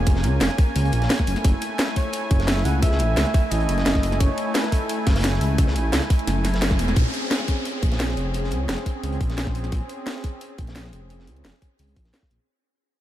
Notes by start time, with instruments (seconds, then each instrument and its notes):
Already playing: detuned saw bass F1, analog synth pad A#3 C#4 G#5, flugelhorn G#4
0.07 kick, closed hi-hat, ride bell
0.15 snare
0.23 detuned saw bass C#2, closed hi-hat, ride bell
0.41 detuned saw bass F1, snare, closed hi-hat, ride bell
0.50 snare
0.58 kick, closed hi-hat, open hi-hat, ride bell
0.76 detuned saw bass C#2, closed hi-hat, ride bell
0.85 closed hi-hat
0.92 detuned saw bass A#1, closed hi-hat, ride bell
1.02 snare, closed hi-hat
1.10 snare, closed hi-hat, ride bell
1.19 kick, snare
1.27 detuned saw bass F#1, analog synth pad A3 E4, closed hi-hat, open hi-hat, ride bell
1.36 snare
1.44 detuned saw bass F#1, kick, closed hi-hat, ride bell
1.61 closed hi-hat, ride bell
1.79 snare, closed hi-hat, ride bell
1.87 snare
1.96 flugelhorn C#5, kick, closed hi-hat, open hi-hat, ride bell
2.13 closed hi-hat, ride bell
2.31 detuned saw bass F#1, kick, closed hi-hat, ride bell
2.40 snare, closed hi-hat
2.47 flugelhorn E5, snare, closed hi-hat, ride bell
2.57 snare
2.65 detuned saw bass C#2, flugelhorn F#5, closed hi-hat, open hi-hat, ride bell
2.82 flugelhorn E5, kick, closed hi-hat, ride bell
2.91 snare
2.99 detuned saw bass A1, closed hi-hat, ride bell
3.17 detuned saw bass C#2, snare, closed hi-hat, ride bell
3.26 snare
3.34 kick, closed hi-hat, open hi-hat, ride bell
3.51 detuned saw bass A1, flugelhorn D#5, closed hi-hat, ride bell
3.60 closed hi-hat
3.69 detuned saw bass F#1, closed hi-hat, ride bell
3.78 snare, closed hi-hat
3.86 detuned saw bass F#1, snare, closed hi-hat, ride bell
3.95 kick, snare
4.03 closed hi-hat, open hi-hat, ride bell
4.12 snare
4.20 detuned saw bass F#1, flugelhorn C#5, kick, closed hi-hat, ride bell
4.38 closed hi-hat, ride bell
4.55 flugelhorn B4, snare, closed hi-hat, ride bell
4.64 snare
4.72 flugelhorn A4, kick, closed hi-hat, open hi-hat, ride bell
4.89 closed hi-hat, ride bell
5.07 detuned saw bass F#1, kick, snare, closed hi-hat, ride bell
5.15 snare, closed hi-hat
5.20 snare, closed hi-hat
5.24 snare, closed hi-hat, ride bell
5.34 snare
5.41 detuned saw bass C#2, closed hi-hat, open hi-hat, ride bell
5.58 kick, closed hi-hat, ride bell
5.67 snare
5.76 detuned saw bass A1, closed hi-hat, ride bell
5.92 detuned saw bass C#2, snare, closed hi-hat, ride bell
6.02 snare
6.10 kick, closed hi-hat, open hi-hat, ride bell
6.19 closed hi-hat
6.27 detuned saw bass F#1, snare, closed hi-hat, ride bell
6.45 snare, closed hi-hat, ride bell
6.54 snare, closed hi-hat
6.62 snare, closed hi-hat, ride bell
6.71 kick, snare
6.79 detuned saw bass E1, closed hi-hat, open hi-hat, ride bell
6.88 snare
6.96 detuned saw bass A#1, analog synth pad C4 C#4 G#4, kick, closed hi-hat, downlifter
7.13 closed hi-hat
7.31 snare, closed hi-hat
7.40 snare
7.48 kick, closed hi-hat
7.65 closed hi-hat
7.83 detuned saw bass A#1, kick, closed hi-hat
7.92 snare, closed hi-hat
8.00 snare, closed hi-hat
8.09 snare
8.17 detuned saw bass F1, closed hi-hat
8.34 closed hi-hat
8.44 snare
8.51 detuned saw bass C#2, closed hi-hat
8.69 detuned saw bass F1, snare, closed hi-hat
8.78 snare
8.86 kick, closed hi-hat
9.03 detuned saw bass C#2, closed hi-hat
9.12 closed hi-hat
9.21 detuned saw bass A#1, kick, closed hi-hat
9.30 snare, closed hi-hat
9.37 detuned saw bass A#1, snare, closed hi-hat
9.47 kick, snare
9.55 closed hi-hat
9.64 snare
9.72 detuned saw bass A#1, kick, closed hi-hat
9.89 closed hi-hat
10.07 snare, closed hi-hat
10.17 snare
10.24 kick, closed hi-hat
10.41 closed hi-hat
10.58 detuned saw bass A#1, kick, closed hi-hat
10.67 snare, closed hi-hat
10.76 snare, closed hi-hat
10.85 snare
10.93 detuned saw bass F1, closed hi-hat
11.10 closed hi-hat
11.19 snare
11.27 detuned saw bass C#2, closed hi-hat
11.37 closed hi-hat
11.45 detuned saw bass F1, snare, closed hi-hat
11.62 kick, closed hi-hat
11.79 detuned saw bass C#2, closed hi-hat
11.88 closed hi-hat
11.96 detuned saw bass A#1, kick, closed hi-hat
12.05 snare, closed hi-hat
12.13 snare, closed hi-hat
12.22 kick, snare
12.30 detuned saw bass A#1, closed hi-hat